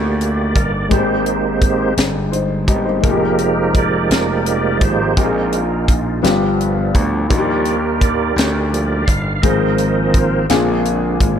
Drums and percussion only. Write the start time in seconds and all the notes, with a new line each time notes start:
0.21 closed hi-hat
0.56 kick, closed hi-hat
0.91 kick, closed hi-hat
1.26 closed hi-hat
1.61 kick, closed hi-hat
1.97 snare, closed hi-hat
2.33 closed hi-hat
2.68 kick, closed hi-hat
3.03 kick, closed hi-hat
3.38 closed hi-hat
3.75 kick, closed hi-hat
4.11 snare, closed hi-hat
4.46 closed hi-hat
4.81 kick, closed hi-hat
5.17 kick, closed hi-hat
5.52 closed hi-hat
5.88 kick, closed hi-hat
6.24 snare, closed hi-hat
6.61 closed hi-hat
6.95 kick, closed hi-hat
7.31 kick, closed hi-hat
7.65 closed hi-hat
8.01 kick, closed hi-hat
8.38 snare, closed hi-hat
8.74 closed hi-hat
9.08 kick, closed hi-hat
9.43 kick, closed hi-hat
9.78 closed hi-hat
10.14 kick, closed hi-hat
10.49 snare, closed hi-hat
10.85 closed hi-hat
11.20 kick, closed hi-hat